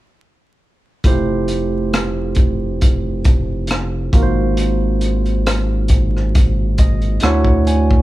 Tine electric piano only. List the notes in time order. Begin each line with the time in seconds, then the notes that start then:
1.04 A3 E4 F4 G4 C5
4.13 A#3 D#4 F4 F#4 A#4
4.23 C5
6.79 D#5
7.22 A3 D4 E4 F#4 C#5 F#5
7.67 G#5